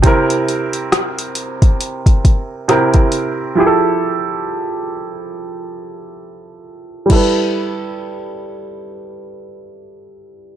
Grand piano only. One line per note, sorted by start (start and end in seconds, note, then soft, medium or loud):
0.02 2.64 C3 medium
0.02 2.65 C4 medium
0.02 2.65 E4 medium
0.07 2.66 A#4 medium
2.68 3.57 C3 medium
2.68 3.57 C4 medium
2.68 3.55 E4 medium
2.68 3.58 A#4 medium
3.55 7.05 F3 medium
3.55 7.06 E4 medium
3.55 7.07 G4 medium
3.60 3.66 G#4 medium
3.67 7.11 A4 medium
7.06 10.56 G3 medium
7.06 10.56 E4 medium
7.12 10.56 A4 medium
7.12 10.56 B4 medium